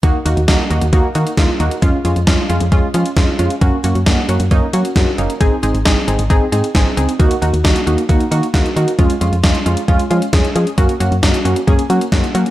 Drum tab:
HH |x-xxx-xxx-xxx-xx|x-xxx-xxx-xxx-xx|x-xxx-xxx-xxx-xx|x-xxx-xxx-xxx-xx|
SD |----o-------o---|----o-------o---|----o-------o---|----o-------o---|
BD |o---o---o---o---|o---o---o---o---|o---o---o---o---|o---o---o---o---|

HH |xxxxxxxxxxxxxxxx|xxxxxxxxxxxxxxxx|xxxxxxxxxxxxxxxx|
SD |----o-------o---|----o-------o---|----o-------o---|
BD |o---o---o---o---|o---o---o---o---|o---o---o---o---|